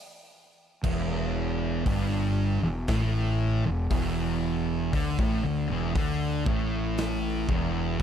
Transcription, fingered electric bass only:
0.84 E1
1.87 G1
2.62 E1
2.88 A1
3.65 E1
3.91 E1
4.93 D2
5.19 A1
5.44 D2
5.70 E1
5.95 D2
6.47 A1
7.49 E1

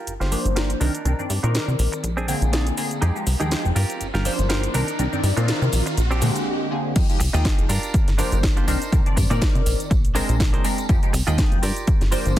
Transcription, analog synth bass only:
0.07 G1
0.20 G1
0.45 G1
0.81 C2
1.05 C2
1.19 G2
1.30 G2
1.43 A#2
1.68 C3
1.79 A#1
2.03 A#1
2.42 A#1
3.02 F2
3.27 C2
3.40 D#2
3.65 F1
3.76 G2
4.00 G1
4.14 G1
4.39 G1
4.74 C2
4.99 C2
5.13 G2
5.23 G2
5.37 A#2
5.62 C3
5.73 A#1
5.97 A#1
6.22 A#2
6.96 F2
7.20 C2
7.34 D#2
7.58 F1
7.69 G2
7.94 G1
8.08 G1
8.32 G1
8.68 C2
8.92 C2
9.06 G2
9.17 G2
9.31 A#2
9.55 C3
9.66 A#1
9.91 A#1
10.29 A#1
10.89 F2
11.14 C2
11.27 D#2
11.52 F1
11.63 G2
11.88 G1
12.01 G1
12.26 G1

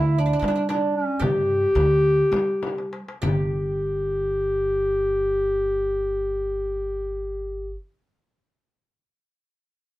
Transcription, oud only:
Already playing: E4
0.18 D4
0.26 D4
0.33 D4
0.39 D4
0.48 D4
0.56 D4
0.69 D4
1.20 G4
3.22 G4

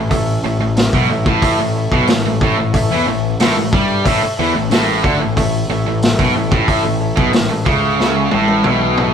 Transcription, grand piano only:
0.10 A4 C#5 E5
0.43 A4 C#5 E5
0.76 A4 C#5 E5
1.10 A4 C#5 E5
1.43 A4 C#5 E5
1.75 A4 C#5 E5
2.08 A4 C#5 E5
2.40 A4 C#5 E5
2.73 A4 C#5 E5
3.06 A4 C#5 E5
3.40 A4 C#5 E5
3.71 A4 C#5 E5
4.04 A4 C#5 E5
4.37 A4 C#5 E5
4.70 A4 C#5 E5
5.04 A4 C#5 E5
5.36 A4 C#5 E5
5.69 A4 C#5 E5
6.03 A4 C#5 E5
6.35 A4 C#5 E5
6.68 A4 C#5 E5
7.00 A4 C#5 E5
7.33 A4 C#5 E5
7.67 A4 C#5 E5
7.99 A4 C#5 E5
8.33 A4 C#5 E5
8.66 A4 C#5 E5 G5
8.98 A4 C#5 E5 A5

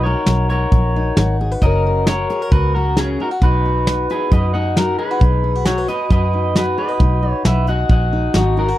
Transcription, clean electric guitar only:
0.03 A#4 C#5
0.50 A#4 C#5
1.63 A#4 D#5
2.07 A#4 C#5
2.52 F#4 B4
2.75 F#4 A#4
2.99 C#4 G#4
3.22 F#4 A#4
3.43 F#4 B4
4.11 G#4 B4
4.33 B4 D#5
4.54 D#5 F#5
4.77 F#4 A#4
4.99 G#4 B4
5.66 F#4 C#5
5.88 B4 D#5
6.12 B4 D#5
6.57 F#4 B4
6.78 B4 D#5
7.31 C#5
7.46 B4 E5
7.68 D#5 F#5
7.91 D#5 F#5
8.36 D#4 F#4
8.59 F#4 A#4

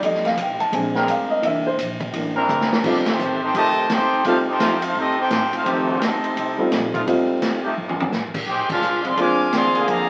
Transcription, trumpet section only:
2.86 A#3 D#4 G4 D5
2.99 A#4
3.09 A3 D#4 G4 C5
3.44 D#4 A4 C5 G5
3.56 G4 C5 D#5 A5
3.93 D#4 A4 C5 G5
4.26 D#4 A4 C5 F5
4.49 D#4 A4 C5 G5
4.84 D#4 A4 C5 F5
4.98 C4 G4 A4 D#5
5.20 D#4 A4 C5 G5
5.55 D#4 A4 C5 F5
5.69 A3 D#4 G4 C5
6.03 C4 G4 A4 D#5
8.48 D#4 G#4 C5 G5
8.71 D4 G#4 C5 F5
9.06 G#4 D5 F5 C6
9.20 C5 F5 G#5 D6
9.56 G#4 D5 F5 C6
9.89 G#4 D5 F5 A#5

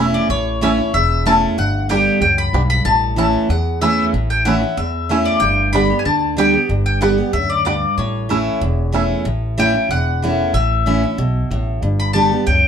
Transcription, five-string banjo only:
0.63 A3 C#4 E4
1.27 A3 C#4 E4
1.91 B3 D4 G4
2.54 B3 D4 G4
3.18 A3 C#4 E4
3.82 A3 C#4 E4
4.47 A3 C#4 E4
5.11 A3 C#4 E4
5.75 B3 D4 G4
6.39 B3 D4 G4
7.02 B3 D4 G4
7.66 B3 D4 G4
8.30 A3 C#4 E4
8.94 A3 C#4 E4

